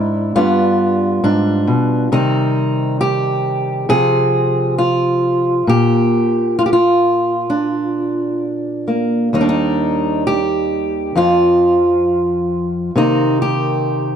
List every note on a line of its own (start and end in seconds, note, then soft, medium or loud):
0.00 0.35 G#2 medium
0.00 0.35 D4 medium
0.00 0.34 E4 medium
0.35 1.23 G2 medium
0.35 2.07 G3 soft
0.35 2.07 B3 soft
0.35 1.23 D4 soft
0.35 2.12 F4 medium
1.24 1.68 G#2 medium
1.24 2.12 D4 medium
1.67 2.11 B2 medium
2.12 3.84 C3 medium
2.12 3.89 D#3 soft
2.12 3.90 G3 soft
2.12 3.85 C4 soft
2.12 3.00 D#4 medium
3.01 3.89 G4 loud
3.89 5.62 C3 medium
3.89 5.63 F3 soft
3.89 5.63 C4 soft
3.89 4.78 G#4 loud
4.78 5.68 F4 medium
5.67 9.33 A#2 medium
5.67 6.58 G4 loud
6.59 6.65 F4 medium
6.66 6.72 G4 medium
6.73 8.41 F4 medium
7.50 9.33 D4 medium
8.88 9.28 A#3 soft
9.33 11.15 D#2 medium
9.33 11.16 D#3 soft
9.33 11.16 G3 soft
9.33 9.48 D#4 medium
9.41 10.39 D4 medium
9.49 10.26 D#4 medium
10.27 11.17 G4 medium
11.15 12.90 F2 medium
11.15 12.90 F3 soft
11.15 12.90 C4 soft
11.15 12.96 F4 medium
12.96 14.16 C3 medium
12.96 14.16 D#3 soft
12.96 14.16 A#3 soft
12.96 14.16 C4 soft
12.96 13.41 D#4 medium
13.42 14.16 G4 medium